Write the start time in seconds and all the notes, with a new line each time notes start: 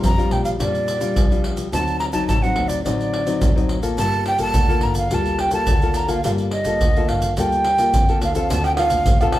Already playing: G3 D4 F4
0.02 F2 F3 A#5, pandeiro, shaker, surdo
0.18 G3 D4 F4, pandeiro, shaker, surdo
0.30 A#1 G5, pandeiro
0.44 F5, pandeiro, shaker, surdo
0.59 F2 A#2 G3 D4 F4 D5, pandeiro, shaker, surdo
0.75 pandeiro, shaker
0.88 pandeiro, shaker
1.00 G3 D4 F4, pandeiro, shaker
1.15 C2 F3, pandeiro, shaker, surdo
1.31 G3 D4 F4, pandeiro, shaker
1.44 pandeiro
1.57 pandeiro, shaker, surdo
1.72 D2 D3 F#3 C4 D#4 A5, pandeiro, shaker, surdo
1.88 pandeiro, shaker
1.99 A#5, pandeiro
2.13 F#3 C4 D#4 A5, pandeiro, shaker, surdo
2.28 A1 A2 A5, pandeiro, shaker, surdo
2.42 F#3 C4 D#4 F#5, pandeiro, shaker, surdo
2.56 D2, pandeiro
2.68 D5, pandeiro, shaker, surdo
2.83 A1 D3 F#3 C4 D#4 D5, pandeiro, shaker, surdo
3.01 pandeiro, shaker
3.14 pandeiro
3.26 F#3 C4 D#4, pandeiro, shaker
3.41 D2 A2, pandeiro, shaker, surdo
3.56 F#3 C4 D#4, pandeiro, shaker
3.69 pandeiro
3.83 A#3 F4 A4, pandeiro, shaker, surdo
3.98 G1 G3 A5, pandeiro, shaker, surdo
4.13 pandeiro, shaker
4.26 G5, pandeiro
4.38 A#3 F4 A4 A5, pandeiro, shaker, surdo
4.54 D2 D3, pandeiro, shaker, surdo
4.68 A#3 F4 A4, pandeiro, shaker, surdo
4.81 G1 A#5, pandeiro
4.95 F5, pandeiro, shaker, surdo
5.11 D2 G3 A#3 F4 A4 A5, pandeiro, shaker, surdo
5.26 pandeiro, shaker, surdo
5.39 G5, pandeiro
5.51 A#3 F4 A4 A5, pandeiro, shaker
5.67 D2 D3, pandeiro, shaker, surdo
5.82 A#3 F4 A4, pandeiro, shaker
5.94 A#5, pandeiro, shaker
6.08 A#3 F4 A4 F5, pandeiro, shaker, surdo
6.24 G1 G3 A#3 F4 A4 F5, pandeiro, shaker, surdo
6.38 pandeiro, shaker
6.51 D#5, pandeiro
6.65 A#3 F4 A4, pandeiro, shaker, surdo
6.81 D2 D3, pandeiro, shaker, surdo
6.96 A#3 F4 A4, pandeiro, shaker, surdo
7.09 G1 F5, pandeiro
7.22 pandeiro, shaker, surdo
7.37 D2 G3 A#3 F4 A4 G5, pandeiro, shaker, surdo
7.52 pandeiro, shaker
7.64 pandeiro
7.78 A#3 F4 A4, pandeiro, shaker
7.94 F2 D3, pandeiro, shaker, surdo
8.09 A#3 F4 A4, pandeiro, shaker
8.22 D2 F5, pandeiro, shaker
8.35 C4 F4 A4 F5, pandeiro, shaker, surdo
8.50 D2 D3 A5, pandeiro, shaker, surdo
8.64 G5, pandeiro, tamborim, shaker
8.77 C4 F4 A4 F5, pandeiro, tamborim
8.90 D2, pandeiro, shaker, surdo
9.06 D2 A2, pandeiro, shaker, surdo
9.21 C4 F4 A4 F5, pandeiro, tamborim, shaker, surdo
9.32 A5, pandeiro, tamborim